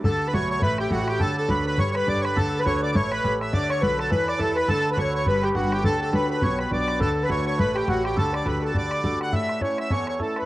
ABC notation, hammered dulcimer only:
X:1
M:4/4
L:1/16
Q:"Swing" 1/4=207
K:D
V:1 name="Hammered dulcimer"
A3 B c2 c2 B2 G2 F2 G2 | A2 A2 B2 B2 c2 B2 d2 B2 | A3 B c2 d2 c2 B4 e2 | d2 c2 B2 A2 B2 d2 A2 B2 |
A3 B c2 c2 B2 G2 F2 G2 | A2 A2 B2 B2 c2 B2 d2 B2 | A3 B c2 c2 B2 G2 F2 G2 | A2 d2 B2 A2 d6 f2 |
[K:A] e4 c2 e2 c2 c2 A2 B2 |]